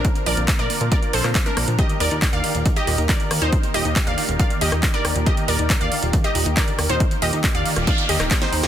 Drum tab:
HH |xxoxxxoxxxoxxxox|xxoxxxoxxxoxxxox|xxoxxxoxxxoxxxox|xxoxxxoxxxoxxxox|
CP |----x------xx---|----x-------x---|----x-------x---|----x-------x---|
SD |-----------r--r-|--------------r-|-----------r--r-|--------------r-|
BD |o---o---o---o---|o---o---o---o---|o---o---o---o---|o---o---o---o---|

HH |xxoxxxoxxxoxxxox|
CP |----x------xx---|
SD |-------r---roo-o|
BD |o---o---o---o---|